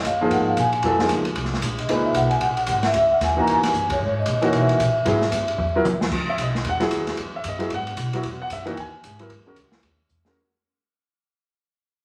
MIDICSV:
0, 0, Header, 1, 6, 480
1, 0, Start_track
1, 0, Tempo, 264667
1, 1513, Time_signature, 4, 2, 24, 8
1, 21839, End_track
2, 0, Start_track
2, 0, Title_t, "Vibraphone"
2, 0, Program_c, 0, 11
2, 109, Note_on_c, 0, 77, 85
2, 580, Note_on_c, 0, 78, 88
2, 586, Note_off_c, 0, 77, 0
2, 838, Note_off_c, 0, 78, 0
2, 886, Note_on_c, 0, 77, 91
2, 962, Note_off_c, 0, 77, 0
2, 1081, Note_on_c, 0, 80, 94
2, 1503, Note_off_c, 0, 80, 0
2, 1556, Note_on_c, 0, 80, 80
2, 1980, Note_off_c, 0, 80, 0
2, 3264, Note_on_c, 0, 75, 72
2, 3705, Note_on_c, 0, 76, 73
2, 3741, Note_off_c, 0, 75, 0
2, 3884, Note_off_c, 0, 76, 0
2, 3922, Note_on_c, 0, 78, 87
2, 4165, Note_on_c, 0, 80, 80
2, 4209, Note_off_c, 0, 78, 0
2, 4352, Note_off_c, 0, 80, 0
2, 4356, Note_on_c, 0, 78, 85
2, 4860, Note_off_c, 0, 78, 0
2, 4886, Note_on_c, 0, 78, 82
2, 5169, Note_off_c, 0, 78, 0
2, 5170, Note_on_c, 0, 76, 84
2, 5348, Note_off_c, 0, 76, 0
2, 5370, Note_on_c, 0, 76, 90
2, 5623, Note_off_c, 0, 76, 0
2, 5658, Note_on_c, 0, 78, 81
2, 5835, Note_off_c, 0, 78, 0
2, 5878, Note_on_c, 0, 80, 86
2, 6144, Note_off_c, 0, 80, 0
2, 6171, Note_on_c, 0, 82, 80
2, 6241, Note_off_c, 0, 82, 0
2, 6354, Note_on_c, 0, 80, 98
2, 7109, Note_on_c, 0, 73, 79
2, 7115, Note_off_c, 0, 80, 0
2, 7532, Note_off_c, 0, 73, 0
2, 7606, Note_on_c, 0, 75, 85
2, 8066, Note_off_c, 0, 75, 0
2, 8069, Note_on_c, 0, 73, 78
2, 8222, Note_off_c, 0, 73, 0
2, 8232, Note_on_c, 0, 76, 78
2, 10547, Note_off_c, 0, 76, 0
2, 21839, End_track
3, 0, Start_track
3, 0, Title_t, "Grand piano"
3, 0, Program_c, 1, 0
3, 381, Note_on_c, 1, 58, 65
3, 382, Note_on_c, 1, 53, 69
3, 407, Note_on_c, 1, 63, 63
3, 408, Note_on_c, 1, 68, 78
3, 1003, Note_off_c, 1, 53, 0
3, 1003, Note_off_c, 1, 58, 0
3, 1016, Note_off_c, 1, 63, 0
3, 1016, Note_off_c, 1, 68, 0
3, 1523, Note_on_c, 1, 54, 58
3, 1543, Note_on_c, 1, 59, 53
3, 1545, Note_on_c, 1, 64, 56
3, 1556, Note_on_c, 1, 69, 60
3, 1778, Note_off_c, 1, 54, 0
3, 1788, Note_off_c, 1, 59, 0
3, 1789, Note_off_c, 1, 64, 0
3, 1794, Note_off_c, 1, 69, 0
3, 1802, Note_on_c, 1, 53, 57
3, 1824, Note_on_c, 1, 63, 53
3, 1826, Note_on_c, 1, 58, 48
3, 1831, Note_on_c, 1, 68, 64
3, 2221, Note_off_c, 1, 53, 0
3, 2232, Note_off_c, 1, 63, 0
3, 2234, Note_off_c, 1, 58, 0
3, 2236, Note_off_c, 1, 68, 0
3, 3430, Note_on_c, 1, 46, 55
3, 3430, Note_on_c, 1, 63, 52
3, 3443, Note_on_c, 1, 68, 50
3, 3447, Note_on_c, 1, 71, 64
3, 4136, Note_off_c, 1, 46, 0
3, 4136, Note_off_c, 1, 63, 0
3, 4142, Note_off_c, 1, 68, 0
3, 4145, Note_off_c, 1, 71, 0
3, 6100, Note_on_c, 1, 52, 67
3, 6115, Note_on_c, 1, 58, 62
3, 6122, Note_on_c, 1, 63, 60
3, 6130, Note_on_c, 1, 66, 69
3, 6732, Note_off_c, 1, 52, 0
3, 6739, Note_off_c, 1, 58, 0
3, 6743, Note_off_c, 1, 63, 0
3, 6747, Note_off_c, 1, 66, 0
3, 8011, Note_on_c, 1, 52, 70
3, 8027, Note_on_c, 1, 58, 64
3, 8036, Note_on_c, 1, 63, 66
3, 8051, Note_on_c, 1, 66, 81
3, 8646, Note_off_c, 1, 52, 0
3, 8654, Note_off_c, 1, 58, 0
3, 8658, Note_off_c, 1, 63, 0
3, 8666, Note_off_c, 1, 66, 0
3, 9163, Note_on_c, 1, 54, 68
3, 9176, Note_on_c, 1, 59, 60
3, 9182, Note_on_c, 1, 64, 58
3, 9194, Note_on_c, 1, 68, 74
3, 9427, Note_off_c, 1, 54, 0
3, 9433, Note_off_c, 1, 59, 0
3, 9436, Note_off_c, 1, 64, 0
3, 9442, Note_off_c, 1, 68, 0
3, 10438, Note_on_c, 1, 59, 59
3, 10444, Note_on_c, 1, 54, 62
3, 10454, Note_on_c, 1, 64, 60
3, 10458, Note_on_c, 1, 70, 77
3, 10598, Note_off_c, 1, 59, 0
3, 10601, Note_off_c, 1, 54, 0
3, 10606, Note_off_c, 1, 64, 0
3, 10608, Note_off_c, 1, 70, 0
3, 11418, Note_on_c, 1, 76, 77
3, 11583, Note_off_c, 1, 76, 0
3, 11655, Note_on_c, 1, 75, 64
3, 12062, Note_off_c, 1, 75, 0
3, 12136, Note_on_c, 1, 78, 78
3, 12330, Note_on_c, 1, 54, 75
3, 12337, Note_on_c, 1, 59, 64
3, 12352, Note_on_c, 1, 64, 66
3, 12361, Note_on_c, 1, 68, 83
3, 12813, Note_off_c, 1, 78, 0
3, 12968, Note_off_c, 1, 54, 0
3, 12971, Note_off_c, 1, 59, 0
3, 12979, Note_off_c, 1, 64, 0
3, 12984, Note_off_c, 1, 68, 0
3, 13350, Note_on_c, 1, 76, 75
3, 13511, Note_off_c, 1, 76, 0
3, 13572, Note_on_c, 1, 75, 70
3, 13764, Note_on_c, 1, 54, 64
3, 13785, Note_on_c, 1, 59, 60
3, 13791, Note_on_c, 1, 68, 68
3, 13792, Note_on_c, 1, 64, 59
3, 13944, Note_off_c, 1, 54, 0
3, 13955, Note_off_c, 1, 59, 0
3, 13958, Note_off_c, 1, 64, 0
3, 13958, Note_off_c, 1, 68, 0
3, 13982, Note_off_c, 1, 75, 0
3, 14043, Note_on_c, 1, 78, 84
3, 14730, Note_off_c, 1, 78, 0
3, 14761, Note_on_c, 1, 54, 64
3, 14772, Note_on_c, 1, 59, 56
3, 14785, Note_on_c, 1, 64, 56
3, 14793, Note_on_c, 1, 66, 68
3, 14925, Note_off_c, 1, 54, 0
3, 14930, Note_off_c, 1, 59, 0
3, 14936, Note_off_c, 1, 64, 0
3, 14940, Note_off_c, 1, 66, 0
3, 15264, Note_on_c, 1, 78, 84
3, 15431, Note_off_c, 1, 78, 0
3, 15463, Note_on_c, 1, 76, 70
3, 15696, Note_on_c, 1, 52, 70
3, 15701, Note_on_c, 1, 58, 59
3, 15718, Note_on_c, 1, 63, 63
3, 15729, Note_on_c, 1, 66, 73
3, 15874, Note_off_c, 1, 52, 0
3, 15876, Note_off_c, 1, 58, 0
3, 15878, Note_on_c, 1, 79, 53
3, 15885, Note_off_c, 1, 63, 0
3, 15890, Note_off_c, 1, 66, 0
3, 15890, Note_off_c, 1, 76, 0
3, 15911, Note_off_c, 1, 79, 0
3, 15963, Note_on_c, 1, 80, 74
3, 16653, Note_off_c, 1, 80, 0
3, 16680, Note_on_c, 1, 54, 59
3, 16687, Note_on_c, 1, 59, 51
3, 16693, Note_on_c, 1, 64, 52
3, 16718, Note_on_c, 1, 70, 61
3, 16848, Note_off_c, 1, 54, 0
3, 16851, Note_off_c, 1, 59, 0
3, 16855, Note_off_c, 1, 64, 0
3, 16867, Note_off_c, 1, 70, 0
3, 17157, Note_on_c, 1, 56, 55
3, 17173, Note_on_c, 1, 61, 55
3, 17185, Note_on_c, 1, 66, 54
3, 17195, Note_on_c, 1, 70, 63
3, 17327, Note_off_c, 1, 56, 0
3, 17335, Note_off_c, 1, 61, 0
3, 17341, Note_off_c, 1, 66, 0
3, 17346, Note_off_c, 1, 70, 0
3, 18600, Note_on_c, 1, 56, 57
3, 18618, Note_on_c, 1, 61, 60
3, 18626, Note_on_c, 1, 66, 59
3, 18628, Note_on_c, 1, 70, 69
3, 18771, Note_off_c, 1, 56, 0
3, 18781, Note_off_c, 1, 61, 0
3, 18785, Note_off_c, 1, 66, 0
3, 18786, Note_off_c, 1, 70, 0
3, 21839, End_track
4, 0, Start_track
4, 0, Title_t, "Upright bass"
4, 0, Program_c, 2, 32
4, 69, Note_on_c, 2, 42, 76
4, 537, Note_off_c, 2, 42, 0
4, 547, Note_on_c, 2, 44, 75
4, 1015, Note_off_c, 2, 44, 0
4, 1026, Note_on_c, 2, 46, 88
4, 1493, Note_off_c, 2, 46, 0
4, 1501, Note_on_c, 2, 41, 74
4, 1970, Note_off_c, 2, 41, 0
4, 1984, Note_on_c, 2, 37, 77
4, 2450, Note_off_c, 2, 37, 0
4, 2465, Note_on_c, 2, 36, 75
4, 2926, Note_off_c, 2, 36, 0
4, 2937, Note_on_c, 2, 34, 76
4, 3404, Note_off_c, 2, 34, 0
4, 3414, Note_on_c, 2, 37, 72
4, 3882, Note_off_c, 2, 37, 0
4, 3889, Note_on_c, 2, 35, 76
4, 4351, Note_off_c, 2, 35, 0
4, 4362, Note_on_c, 2, 34, 72
4, 4834, Note_off_c, 2, 34, 0
4, 4851, Note_on_c, 2, 32, 81
4, 5318, Note_off_c, 2, 32, 0
4, 5326, Note_on_c, 2, 37, 72
4, 5795, Note_off_c, 2, 37, 0
4, 5804, Note_on_c, 2, 39, 81
4, 6273, Note_off_c, 2, 39, 0
4, 6286, Note_on_c, 2, 40, 79
4, 6559, Note_off_c, 2, 40, 0
4, 6765, Note_on_c, 2, 42, 81
4, 7232, Note_off_c, 2, 42, 0
4, 7261, Note_on_c, 2, 44, 81
4, 7721, Note_off_c, 2, 44, 0
4, 7743, Note_on_c, 2, 46, 79
4, 8201, Note_off_c, 2, 46, 0
4, 8213, Note_on_c, 2, 47, 82
4, 8676, Note_off_c, 2, 47, 0
4, 8692, Note_on_c, 2, 46, 87
4, 9155, Note_off_c, 2, 46, 0
4, 9171, Note_on_c, 2, 44, 75
4, 9631, Note_off_c, 2, 44, 0
4, 9641, Note_on_c, 2, 42, 75
4, 10110, Note_off_c, 2, 42, 0
4, 10119, Note_on_c, 2, 40, 76
4, 10589, Note_off_c, 2, 40, 0
4, 10603, Note_on_c, 2, 39, 85
4, 11071, Note_off_c, 2, 39, 0
4, 11089, Note_on_c, 2, 37, 73
4, 11550, Note_off_c, 2, 37, 0
4, 11561, Note_on_c, 2, 35, 73
4, 12031, Note_off_c, 2, 35, 0
4, 12044, Note_on_c, 2, 40, 75
4, 12513, Note_off_c, 2, 40, 0
4, 12537, Note_on_c, 2, 39, 82
4, 13000, Note_off_c, 2, 39, 0
4, 13011, Note_on_c, 2, 40, 76
4, 13478, Note_off_c, 2, 40, 0
4, 13492, Note_on_c, 2, 42, 78
4, 13959, Note_off_c, 2, 42, 0
4, 13967, Note_on_c, 2, 44, 74
4, 14437, Note_off_c, 2, 44, 0
4, 14445, Note_on_c, 2, 47, 83
4, 14917, Note_off_c, 2, 47, 0
4, 14935, Note_on_c, 2, 40, 71
4, 15403, Note_off_c, 2, 40, 0
4, 15418, Note_on_c, 2, 42, 82
4, 15885, Note_off_c, 2, 42, 0
4, 15900, Note_on_c, 2, 39, 69
4, 16367, Note_off_c, 2, 39, 0
4, 16395, Note_on_c, 2, 44, 81
4, 16856, Note_off_c, 2, 44, 0
4, 16870, Note_on_c, 2, 40, 76
4, 17334, Note_off_c, 2, 40, 0
4, 17344, Note_on_c, 2, 37, 81
4, 17808, Note_off_c, 2, 37, 0
4, 17819, Note_on_c, 2, 39, 74
4, 18291, Note_off_c, 2, 39, 0
4, 18314, Note_on_c, 2, 40, 77
4, 18779, Note_off_c, 2, 40, 0
4, 21839, End_track
5, 0, Start_track
5, 0, Title_t, "Muted upright bass strokes"
5, 6577, Note_on_c, 9, 29, 36
5, 6758, Note_off_c, 9, 29, 0
5, 21839, End_track
6, 0, Start_track
6, 0, Title_t, "Drums"
6, 84, Note_on_c, 9, 44, 52
6, 84, Note_on_c, 9, 51, 56
6, 265, Note_off_c, 9, 44, 0
6, 265, Note_off_c, 9, 51, 0
6, 558, Note_on_c, 9, 51, 58
6, 739, Note_off_c, 9, 51, 0
6, 1032, Note_on_c, 9, 44, 51
6, 1032, Note_on_c, 9, 51, 62
6, 1213, Note_off_c, 9, 44, 0
6, 1213, Note_off_c, 9, 51, 0
6, 1316, Note_on_c, 9, 51, 40
6, 1498, Note_off_c, 9, 51, 0
6, 1498, Note_on_c, 9, 51, 58
6, 1679, Note_off_c, 9, 51, 0
6, 1794, Note_on_c, 9, 38, 54
6, 1976, Note_off_c, 9, 38, 0
6, 1977, Note_on_c, 9, 44, 44
6, 1977, Note_on_c, 9, 51, 63
6, 2158, Note_off_c, 9, 44, 0
6, 2158, Note_off_c, 9, 51, 0
6, 2264, Note_on_c, 9, 51, 41
6, 2446, Note_off_c, 9, 51, 0
6, 2457, Note_on_c, 9, 51, 54
6, 2624, Note_on_c, 9, 38, 28
6, 2638, Note_off_c, 9, 51, 0
6, 2785, Note_off_c, 9, 38, 0
6, 2785, Note_on_c, 9, 38, 40
6, 2939, Note_on_c, 9, 44, 57
6, 2939, Note_on_c, 9, 51, 61
6, 2966, Note_off_c, 9, 38, 0
6, 3120, Note_off_c, 9, 44, 0
6, 3120, Note_off_c, 9, 51, 0
6, 3236, Note_on_c, 9, 51, 44
6, 3417, Note_off_c, 9, 51, 0
6, 3422, Note_on_c, 9, 51, 61
6, 3603, Note_off_c, 9, 51, 0
6, 3890, Note_on_c, 9, 44, 53
6, 3890, Note_on_c, 9, 51, 59
6, 4071, Note_off_c, 9, 44, 0
6, 4071, Note_off_c, 9, 51, 0
6, 4184, Note_on_c, 9, 51, 41
6, 4365, Note_off_c, 9, 51, 0
6, 4367, Note_on_c, 9, 51, 56
6, 4549, Note_off_c, 9, 51, 0
6, 4660, Note_on_c, 9, 51, 46
6, 4835, Note_off_c, 9, 51, 0
6, 4835, Note_on_c, 9, 44, 59
6, 4835, Note_on_c, 9, 51, 64
6, 5016, Note_off_c, 9, 44, 0
6, 5016, Note_off_c, 9, 51, 0
6, 5129, Note_on_c, 9, 51, 42
6, 5130, Note_on_c, 9, 38, 51
6, 5310, Note_off_c, 9, 51, 0
6, 5312, Note_off_c, 9, 38, 0
6, 5327, Note_on_c, 9, 51, 65
6, 5509, Note_off_c, 9, 51, 0
6, 5821, Note_on_c, 9, 44, 47
6, 5821, Note_on_c, 9, 51, 61
6, 5823, Note_on_c, 9, 38, 33
6, 6002, Note_off_c, 9, 44, 0
6, 6002, Note_off_c, 9, 51, 0
6, 6004, Note_off_c, 9, 38, 0
6, 6106, Note_on_c, 9, 36, 49
6, 6287, Note_off_c, 9, 36, 0
6, 6299, Note_on_c, 9, 51, 56
6, 6480, Note_off_c, 9, 51, 0
6, 6589, Note_on_c, 9, 51, 67
6, 6591, Note_on_c, 9, 38, 44
6, 6771, Note_off_c, 9, 51, 0
6, 6772, Note_off_c, 9, 38, 0
6, 6775, Note_on_c, 9, 44, 56
6, 6957, Note_off_c, 9, 44, 0
6, 7063, Note_on_c, 9, 36, 82
6, 7070, Note_on_c, 9, 51, 68
6, 7244, Note_off_c, 9, 36, 0
6, 7251, Note_off_c, 9, 51, 0
6, 7723, Note_on_c, 9, 44, 45
6, 7723, Note_on_c, 9, 51, 59
6, 7904, Note_off_c, 9, 44, 0
6, 7904, Note_off_c, 9, 51, 0
6, 8023, Note_on_c, 9, 51, 43
6, 8205, Note_off_c, 9, 51, 0
6, 8212, Note_on_c, 9, 51, 53
6, 8393, Note_off_c, 9, 51, 0
6, 8508, Note_on_c, 9, 51, 43
6, 8689, Note_off_c, 9, 51, 0
6, 8702, Note_on_c, 9, 44, 56
6, 8702, Note_on_c, 9, 51, 65
6, 8884, Note_off_c, 9, 44, 0
6, 8884, Note_off_c, 9, 51, 0
6, 9168, Note_on_c, 9, 51, 61
6, 9350, Note_off_c, 9, 51, 0
6, 9453, Note_on_c, 9, 38, 39
6, 9635, Note_off_c, 9, 38, 0
6, 9644, Note_on_c, 9, 44, 49
6, 9644, Note_on_c, 9, 51, 65
6, 9826, Note_off_c, 9, 44, 0
6, 9826, Note_off_c, 9, 51, 0
6, 9937, Note_on_c, 9, 51, 43
6, 10118, Note_off_c, 9, 51, 0
6, 10122, Note_on_c, 9, 47, 43
6, 10303, Note_off_c, 9, 47, 0
6, 10609, Note_on_c, 9, 44, 57
6, 10610, Note_on_c, 9, 47, 69
6, 10790, Note_off_c, 9, 44, 0
6, 10792, Note_off_c, 9, 47, 0
6, 10904, Note_on_c, 9, 38, 64
6, 11085, Note_off_c, 9, 38, 0
6, 11089, Note_on_c, 9, 36, 72
6, 11091, Note_on_c, 9, 49, 74
6, 11271, Note_off_c, 9, 36, 0
6, 11273, Note_off_c, 9, 49, 0
6, 11575, Note_on_c, 9, 44, 46
6, 11575, Note_on_c, 9, 51, 60
6, 11756, Note_off_c, 9, 44, 0
6, 11756, Note_off_c, 9, 51, 0
6, 11879, Note_on_c, 9, 38, 42
6, 12052, Note_on_c, 9, 51, 52
6, 12061, Note_off_c, 9, 38, 0
6, 12233, Note_off_c, 9, 51, 0
6, 12338, Note_on_c, 9, 51, 44
6, 12340, Note_on_c, 9, 38, 42
6, 12520, Note_off_c, 9, 51, 0
6, 12522, Note_off_c, 9, 38, 0
6, 12527, Note_on_c, 9, 44, 54
6, 12527, Note_on_c, 9, 51, 69
6, 12709, Note_off_c, 9, 44, 0
6, 12709, Note_off_c, 9, 51, 0
6, 12822, Note_on_c, 9, 51, 46
6, 12824, Note_on_c, 9, 38, 38
6, 13004, Note_off_c, 9, 51, 0
6, 13005, Note_off_c, 9, 38, 0
6, 13006, Note_on_c, 9, 51, 58
6, 13187, Note_off_c, 9, 51, 0
6, 13490, Note_on_c, 9, 44, 57
6, 13490, Note_on_c, 9, 51, 61
6, 13671, Note_off_c, 9, 44, 0
6, 13671, Note_off_c, 9, 51, 0
6, 13780, Note_on_c, 9, 51, 42
6, 13961, Note_off_c, 9, 51, 0
6, 13971, Note_on_c, 9, 51, 54
6, 14152, Note_off_c, 9, 51, 0
6, 14271, Note_on_c, 9, 51, 40
6, 14453, Note_off_c, 9, 51, 0
6, 14454, Note_on_c, 9, 44, 55
6, 14454, Note_on_c, 9, 51, 68
6, 14635, Note_off_c, 9, 44, 0
6, 14635, Note_off_c, 9, 51, 0
6, 14750, Note_on_c, 9, 51, 44
6, 14932, Note_off_c, 9, 51, 0
6, 14932, Note_on_c, 9, 51, 58
6, 15113, Note_off_c, 9, 51, 0
6, 15416, Note_on_c, 9, 44, 50
6, 15416, Note_on_c, 9, 51, 59
6, 15597, Note_off_c, 9, 44, 0
6, 15597, Note_off_c, 9, 51, 0
6, 15714, Note_on_c, 9, 51, 40
6, 15896, Note_off_c, 9, 51, 0
6, 15908, Note_on_c, 9, 51, 51
6, 16089, Note_off_c, 9, 51, 0
6, 16387, Note_on_c, 9, 44, 53
6, 16387, Note_on_c, 9, 51, 59
6, 16569, Note_off_c, 9, 44, 0
6, 16569, Note_off_c, 9, 51, 0
6, 16672, Note_on_c, 9, 51, 41
6, 16853, Note_off_c, 9, 51, 0
6, 16863, Note_on_c, 9, 51, 55
6, 17045, Note_off_c, 9, 51, 0
6, 17343, Note_on_c, 9, 44, 49
6, 17343, Note_on_c, 9, 51, 59
6, 17525, Note_off_c, 9, 44, 0
6, 17525, Note_off_c, 9, 51, 0
6, 17625, Note_on_c, 9, 38, 49
6, 17806, Note_off_c, 9, 38, 0
6, 17825, Note_on_c, 9, 51, 52
6, 18006, Note_off_c, 9, 51, 0
6, 18300, Note_on_c, 9, 44, 49
6, 18481, Note_off_c, 9, 44, 0
6, 18587, Note_on_c, 9, 38, 56
6, 18769, Note_off_c, 9, 38, 0
6, 21839, End_track
0, 0, End_of_file